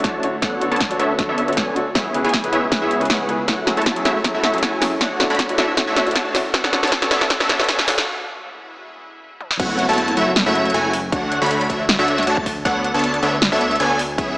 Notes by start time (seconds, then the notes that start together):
Already playing: D3 A3 C#4 E4 F#4 C#5
0.04 D2 A3 D4 F#4 C#5 A5, kick, snare, closed hi-hat
0.22 D3 D4 E4 F#4 C#5, closed hi-hat
0.42 D2 B3 D4 A4 C#5 F#5, kick, snare, closed hi-hat
0.60 D3 D4 F#4 A4 C#5, closed hi-hat
0.71 D2 B3 D4 A4 C#5 A5, closed hi-hat
0.76 closed hi-hat
0.81 kick, snare, closed hi-hat
0.89 D3 D4 F#4 A4 C#5, closed hi-hat
0.99 D2 B3 D4 A4 C#5 E5, closed hi-hat
1.18 D3 D4 F#4 A4 C#5, kick, snare, closed hi-hat
1.29 D2 B3 D4 A4 C#5 E5
1.38 closed hi-hat
1.47 D3 D4 F#4 A4 C#5, closed hi-hat
1.53 closed hi-hat
1.57 D2 B3 D4 A4 C#5 G#5, kick, snare, closed hi-hat
1.75 D3 D4 F#4 A4 C#5, closed hi-hat
1.95 C#2 C#3 G#3 B3 E4 G#4 C#5 E5, kick, snare, closed hi-hat
2.13 C#3 C#4 E4 G#4 B4, closed hi-hat
2.24 C#2 B3 E4 G#4 C#5 G#5, closed hi-hat
2.29 closed hi-hat
2.33 kick, snare, closed hi-hat
2.43 C#3 C#4 E4 G#4 B4, closed hi-hat
2.52 C#2 B3 E4 G#4 C#5 E5, closed hi-hat
2.71 C#3 C#4 E4 G#4 B4, kick, snare, closed hi-hat
2.82 C#2 B3 E4 G#4 C#5 E5
2.91 closed hi-hat
3.00 C#3 C#4 E4 G#4 B4, closed hi-hat
3.05 closed hi-hat
3.10 B3 E4 G#4 C#5 F#5, kick, snare, closed hi-hat
3.28 C#3 C#4 E4 G#4 B4, closed hi-hat
3.48 F#3 A3 C#4 E4 F#4 A4 C#5 F#5, kick, snare, closed hi-hat, riser
3.66 F#3 C#4 E4 G#4 A4, snare, closed hi-hat
3.77 F#1 A3 E4 F#4 C#5 A5, closed hi-hat
3.82 closed hi-hat
3.86 kick, snare, closed hi-hat
3.95 F#3 C#4 E4 G#4 A4, closed hi-hat
4.05 A3 E4 F#4 C#5 E5, snare, closed hi-hat
4.24 F#3 C#4 E4 G#4 A4, kick, snare, closed hi-hat
4.35 F#1 A3 E4 F#4 C#5 E5
4.44 snare, closed hi-hat
4.53 F#3 C#4 E4 G#4 A4, closed hi-hat
4.58 closed hi-hat
4.63 A3 E4 F#4 C#5 G#5, kick, snare, closed hi-hat
4.81 F#3 C#4 E4 G#4 A4, snare, open hi-hat
5.01 D2 D3 A3 D4 F#4 C#5 F#5, kick, snare, closed hi-hat
5.19 D3 D4 E4 F#4 C#5, snare, closed hi-hat
5.30 D2 A3 D4 F#4 C#5 B5, closed hi-hat
5.35 closed hi-hat
5.39 kick, snare, closed hi-hat
5.48 D3 D4 E4 F#4 C#5, closed hi-hat
5.58 D2 A3 D4 F#4 C#5 E5, snare, closed hi-hat
5.76 D3 D4 E4 F#4 C#5, kick, snare, closed hi-hat
5.87 D2 A3 D4 F#4 C#5 E5
5.96 snare, closed hi-hat
6.05 D3 D4 E4 F#4 C#5, closed hi-hat
6.11 closed hi-hat
6.16 A3 D4 F#4 C#5 A5, kick, snare, closed hi-hat
6.34 D3 D4 E4 F#4 C#5, snare, open hi-hat
6.54 D3 B3 D4 A4 C#5 F#5, kick, snare, closed hi-hat
6.64 snare
6.72 D3 D4 F#4 A4 C#5, snare, closed hi-hat
6.83 D2 B3 D4 A4 C#5 A5, snare, closed hi-hat
6.87 closed hi-hat
6.92 kick, snare, closed hi-hat
7.01 D3 D4 F#4 A4 C#5, snare, closed hi-hat
7.11 D2 B3 D4 A4 C#5 E5, snare, closed hi-hat
7.21 snare
7.29 D3 D4 F#4 A4 C#5, kick, snare, closed hi-hat
7.40 D2 B3 D4 A4 C#5 E5, snare
7.49 snare, closed hi-hat
7.59 D3 D4 F#4 A4 C#5, snare, closed hi-hat
7.64 closed hi-hat
7.69 B3 D4 A4 C#5 G#5, kick, snare, closed hi-hat
7.79 snare
7.87 D3 D4 F#4 A4 C#5, snare, open hi-hat
7.98 snare
8.07 C#3 G#3 B3 E4
9.41 high tom
9.51 snare
9.60 F#1 A3 E4 F#4 C#5 F#5, kick, closed hi-hat, crash, downlifter
9.79 closed hi-hat
9.89 F#1 A3 E4 F#4 C#5 A5, closed hi-hat
9.93 closed hi-hat
9.98 closed hi-hat
10.08 closed hi-hat
10.17 F#1 A3 E4 F#4 C#5 E5, closed hi-hat
10.36 snare, closed hi-hat
10.46 F#1 A3 E4 F#4 C#5 E5
10.55 closed hi-hat
10.65 closed hi-hat
10.70 closed hi-hat
10.74 F#1 A3 E4 F#4 C#5 G#5, closed hi-hat
10.93 open hi-hat
11.12 D2 A3 D4 F#4 C#5 F#5, kick, closed hi-hat
11.32 closed hi-hat
11.42 D2 A3 D4 F#4 C#5 B5, closed hi-hat
11.46 closed hi-hat
11.51 closed hi-hat
11.61 closed hi-hat
11.70 A3 D4 F#4 C#5 E5, kick, closed hi-hat
11.89 snare, closed hi-hat
11.99 D2 A3 D4 F#4 C#5 E5
12.08 closed hi-hat
12.18 snare, closed hi-hat
12.23 closed hi-hat
12.27 D2 A3 D4 F#4 C#5 A5, closed hi-hat
12.37 kick
12.46 kick, open hi-hat
12.65 D2 B3 D4 A4 C#5 F#5, kick, closed hi-hat
12.84 closed hi-hat
12.94 D2 B3 D4 A4 C#5 A5, closed hi-hat
12.99 closed hi-hat
13.04 closed hi-hat
13.14 closed hi-hat
13.23 D2 B3 D4 A4 C#5 E5, closed hi-hat
13.42 snare, closed hi-hat
13.52 D2 B3 D4 A4 C#5 E5
13.61 closed hi-hat
13.71 closed hi-hat
13.76 closed hi-hat
13.80 D2 B3 D4 A4 C#5 G#5, closed hi-hat
13.99 open hi-hat
14.18 C#2 B3 E4 G#4 C#5 E5, kick, closed hi-hat